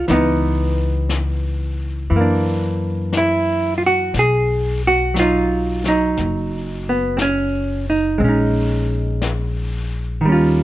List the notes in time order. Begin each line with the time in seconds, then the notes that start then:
0.08 C#2 E3 B3 D#4, brush sweep, snare
0.13 D#4
1.09 brush sweep, snare, hi-hat pedal
2.10 F#2 E3, brush sweep
2.16 A#3
2.21 D4
3.13 brush sweep, snare, hi-hat pedal
3.17 E4
3.78 F4
3.86 F#4
4.14 B1, brush sweep, snare
4.19 G#4
4.87 F#4
5.14 F#3, brush sweep, snare, hi-hat pedal
5.19 D#4 F4
5.84 F#3, snare
5.88 D#4
6.17 F#1, brush sweep, snare
6.89 B3
7.17 C4, brush sweep, snare, hi-hat pedal
7.22 C#4
7.90 D#4
8.18 A#1 G#3 C4, brush sweep
8.24 C#4
8.29 D#4
9.22 brush sweep, snare, hi-hat pedal
10.21 D#2 D#3, brush sweep
10.25 G3 C#4
10.32 F4